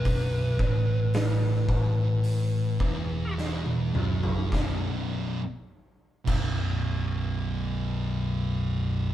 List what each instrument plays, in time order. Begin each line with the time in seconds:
Already playing: picked electric bass B0, distorted electric guitar B1, lead electric guitar B4
0.05 kick, open hi-hat
0.59 picked electric bass A1, distorted electric guitar A2, kick
1.14 snare, open hi-hat
1.68 picked electric bass A1, distorted electric guitar A2, kick
2.24 open hi-hat
2.80 picked electric bass E1, distorted electric guitar E2, kick
3.38 snare
3.66 high tom
3.94 picked electric bass F#1, distorted electric guitar F#2, mid tom
4.23 floor tom
4.51 picked electric bass B0, distorted electric guitar B1 F#2, kick, snare
4.55 distorted electric guitar B2
6.26 picked electric bass B0, distorted electric guitar B1 F#2 B2, kick, crash